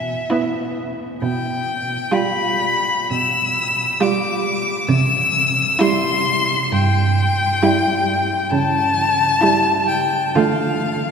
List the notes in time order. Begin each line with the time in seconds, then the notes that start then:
Already playing: B2 E5
0.30 B3 E4
1.22 B2 G5
2.12 G3 F4 B5
3.11 B2 E6
4.01 G3 F4 D6
4.88 C3 E6
5.79 G3 E4 C6
6.72 G2 G5
7.63 G3 E4
8.50 C#3 A5
9.41 G3 E4
9.88 G5
10.35 D3 A3 F4 F5